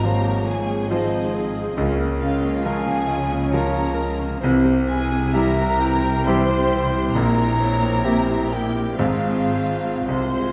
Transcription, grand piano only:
0.00 1.74 G#1 medium
0.00 1.74 G#2 medium
0.00 0.87 F3 soft
0.05 0.87 F4 soft
0.05 0.88 C5 soft
0.91 1.74 F3 medium
0.91 1.74 F4 medium
0.91 1.74 C5 medium
1.77 4.39 C#2 medium
1.77 4.39 C#3 medium
2.65 3.49 F3 soft
2.65 3.49 F4 medium
2.65 3.50 A#4 medium
3.53 4.39 F3 medium
3.53 4.40 F4 medium
3.53 4.40 A#4 medium
4.43 7.12 C2 medium
4.43 7.12 C3 medium
5.33 6.22 G3 medium
5.33 6.22 E4 medium
5.33 6.22 G4 medium
6.27 7.12 G3 medium
6.27 7.12 E4 medium
6.27 7.13 G4 medium
7.15 8.96 A#1 medium
7.15 8.96 A#2 medium
8.04 8.96 C4 soft
8.04 8.96 E4 medium
8.04 8.96 G4 medium
8.99 10.05 G#1 medium
8.99 10.05 G#2 medium
8.99 10.05 C4 medium
8.99 10.05 F4 soft
8.99 10.05 G#4 soft
10.08 10.52 C2 medium
10.08 10.52 C3 medium

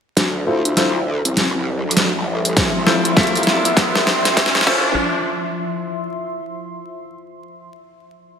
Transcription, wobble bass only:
0.17 0.62 D2 loud
0.65 1.22 D2 loud
1.25 1.52 C2 medium
1.55 1.82 C2 loud
1.85 2.12 D2 medium
2.15 2.72 A1 loud
2.75 3.15 C2 medium
3.17 3.79 C2 loud
3.79 4.05 B1 loud
4.07 4.52 D2 loud
4.67 4.95 D1 loud

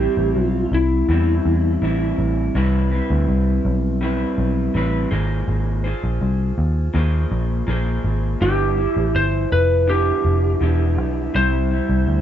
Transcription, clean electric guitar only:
0.00 1.09 G3 soft
0.00 1.10 C4 soft
0.00 1.11 E4 soft
1.09 1.81 E3 medium
1.09 1.83 G3 medium
1.09 1.84 C4 medium
1.09 1.85 E4 medium
1.82 2.55 E3 medium
1.82 2.55 G3 medium
1.82 2.56 C4 medium
1.82 2.56 E4 medium
2.55 2.92 C3 medium
2.55 2.92 E3 medium
2.55 2.92 G3 medium
2.55 2.92 C4 medium
2.55 2.91 E4 medium
2.55 2.90 B4 medium
2.91 4.00 G3 soft
2.91 4.02 C4 medium
2.91 4.02 E4 medium
2.91 4.02 B4 medium
4.01 4.73 G3 medium
4.01 4.75 C4 medium
4.01 4.75 E4 medium
4.01 4.76 B4 medium
4.74 5.11 G3 medium
4.74 5.12 C4 medium
4.74 5.11 E4 medium
4.74 5.10 B4 medium
5.11 5.86 G#3 medium
5.11 5.86 A#3 medium
5.11 5.87 F4 medium
5.11 5.84 G#4 medium
5.11 5.83 C5 medium
5.84 6.94 F4 soft
5.84 6.95 G#4 soft
5.84 6.95 C5 medium
6.94 7.65 A#3 medium
6.94 7.67 F4 medium
6.94 7.68 G#4 medium
6.94 7.69 C5 medium
7.67 8.41 A#3 medium
7.67 8.42 F4 medium
7.67 8.42 G#4 medium
7.67 8.43 C5 medium
8.40 8.78 G2 medium
8.40 8.78 D3 medium
8.40 8.78 F3 medium
8.40 8.79 B3 medium
8.40 8.76 E4 medium
8.77 9.87 F3 soft
8.77 9.90 E4 medium
9.87 10.59 D3 medium
9.87 10.61 F3 medium
9.87 10.62 B3 medium
9.87 10.63 E4 medium
10.61 11.34 D3 medium
10.61 11.35 F3 medium
10.61 11.37 B3 medium
10.61 11.36 E4 medium
11.34 11.71 C3 medium
11.34 11.72 G3 medium
11.34 11.69 E4 medium
11.71 12.21 G3 soft
11.71 12.21 E4 soft

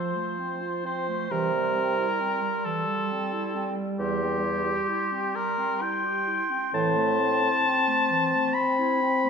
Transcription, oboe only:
0.00 0.83 C5 medium
0.86 1.33 C5 medium
1.31 2.66 A#4 medium
2.65 3.72 A4 medium
4.00 5.36 G4 medium
5.35 5.83 A#4 medium
5.82 6.73 G5 medium
6.74 8.55 A5 loud
8.53 9.30 B5 loud

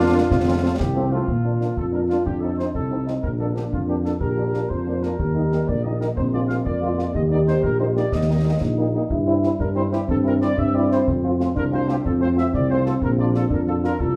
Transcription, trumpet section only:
0.00 0.75 F4 medium
0.78 1.09 G4 medium
1.11 1.77 F4 medium
1.78 1.85 A4 medium
1.93 2.01 A#4 soft
2.09 2.24 F4 soft
2.26 2.41 G4 medium
2.40 2.58 A4 medium
2.58 2.65 C5 soft
2.75 3.09 A4 medium
3.23 3.30 A#4 medium
3.39 3.47 A4 medium
3.56 3.63 G4 soft
3.73 3.80 F4 medium
3.89 3.96 G4 soft
4.05 4.12 A4 soft
4.21 4.67 A#4 medium
4.70 5.03 C5 medium
5.03 5.68 A#4 medium
5.68 5.84 D5 medium
5.83 6.00 D#5 medium
6.00 6.08 A#4 medium
6.17 6.24 C5 medium
6.33 6.41 D5 medium
6.48 6.55 F5 medium
6.65 7.11 D5 medium
7.15 7.22 D#5 medium
7.31 7.39 D5 medium
7.47 7.63 C5 medium
7.63 7.79 A#4 medium
7.80 7.87 C5 medium
7.97 8.12 D5 medium
8.13 8.62 D#5 medium
9.60 9.68 A#4 medium
9.76 9.83 C5 medium
9.93 10.00 G4 medium
10.09 10.17 A4 medium
10.26 10.33 A#4 medium
10.42 10.57 D5 medium
10.58 10.74 E5 medium
10.75 10.91 D5 medium
10.92 11.06 C5 medium
11.57 11.64 A#4 medium
11.74 11.88 C5 medium
11.90 11.97 G4 medium
12.06 12.13 A4 medium
12.21 12.29 C5 medium
12.38 12.45 E5 medium
12.54 12.69 D5 medium
12.70 12.85 C5 medium
12.86 12.94 A4 medium
13.03 13.10 A#4 medium
13.19 13.26 D5 medium
13.36 13.43 A4 medium
13.52 13.59 A#4 medium
13.67 13.75 A4 medium
13.85 14.00 A#4 medium
14.00 14.16 A4 medium

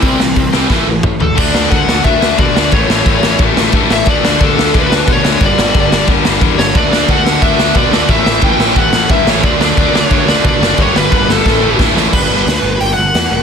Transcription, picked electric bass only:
0.02 0.14 C2 loud
0.19 0.31 C2 medium
0.36 0.48 C2 medium
0.54 0.65 C2 medium
0.70 0.82 A1 medium
0.87 0.99 A1 medium
1.03 1.15 A2 medium
1.21 1.32 E1 medium
1.37 1.49 D2 loud
1.54 1.65 D2 medium
1.71 1.83 D2 medium
1.88 1.99 D2 medium
2.04 2.16 D2 loud
2.22 2.33 D2 medium
2.38 2.50 B2 medium
2.55 2.67 D2 medium
2.72 2.83 A1 loud
2.89 3.00 A1 medium
3.05 3.17 A1 medium
3.23 3.34 A1 medium
3.40 3.51 A1 loud
3.57 3.68 A1 medium
3.72 3.84 G2 medium
3.90 4.01 A1 medium
4.06 4.17 D2 loud
4.24 4.35 D2 medium
4.41 4.52 D2 loud
4.58 4.69 D2 loud
4.75 4.85 D2 loud
4.90 5.02 D2 medium
5.07 5.19 B2 medium
5.25 5.36 D2 medium
5.41 5.52 G1 loud
5.58 5.69 G1 medium
5.75 5.86 G1 loud
5.92 6.03 G1 medium
6.07 6.19 G1 loud
6.26 6.37 G1 medium
6.42 6.53 E2 medium
6.59 6.76 G1 medium
6.75 6.86 D2 loud
6.91 7.03 D2 medium
7.08 7.19 D2 medium
7.24 7.36 D2 medium
7.42 7.53 D2 loud
7.59 7.70 D2 medium
7.75 7.87 B2 medium
7.91 8.03 D2 medium
8.09 8.20 A1 loud
8.26 8.37 A1 medium
8.41 8.53 A1 loud
8.59 8.70 A1 medium
8.75 8.87 A1 loud
8.91 9.03 A1 medium
9.10 9.21 G2 medium
9.25 9.43 A1 medium
9.43 9.55 D2 loud
9.59 9.71 D2 loud
9.77 9.88 D2 loud
9.93 10.04 D2 loud
10.10 10.22 D2 loud
10.26 10.38 D2 medium
10.44 10.55 B2 medium
10.60 10.72 F#1 medium
10.79 10.90 G1 loud
10.95 11.06 G1 medium
11.11 11.23 G1 medium
11.28 11.40 G1 loud
11.45 11.57 A1 medium
11.61 11.73 A1 medium
11.78 11.90 G2 medium
11.95 12.07 A1 medium
12.12 12.25 G1 medium
12.28 12.41 G1 medium
12.46 12.58 D2 medium
12.63 12.75 G1 medium
12.81 12.93 G1 medium
12.97 13.10 G1 medium
13.14 13.26 E2 medium
13.31 13.43 E1 medium

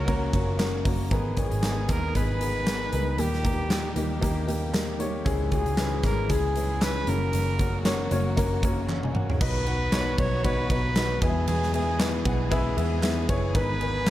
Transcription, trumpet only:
0.00 0.60 A#4 loud
1.38 1.92 G#4 medium
1.91 2.16 A#4 medium
2.16 3.21 B4 medium
3.19 4.23 G4 medium
5.54 6.01 G#4 medium
6.06 6.33 A#4 medium
6.31 6.84 G#4 medium
6.83 7.10 B4 loud
7.09 8.12 A#4 medium
9.42 10.20 B4 loud
10.19 10.46 C#5 loud
10.44 11.23 B4 loud
11.22 11.48 G#4 medium
11.48 11.72 G#4 medium
11.74 12.22 G#4 medium
13.56 14.10 B4 loud

